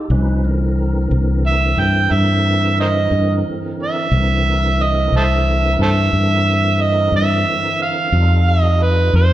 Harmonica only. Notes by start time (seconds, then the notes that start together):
1.46 E5
1.79 G5
2.12 E5
2.81 A#4 C5 D#5
3.83 E5
4.83 D#5
5.16 A4 C5 E5
5.83 A4 C5 E5
6.81 D#5
7.16 E5
7.82 F5
8.50 D#5
8.82 B4
9.15 C5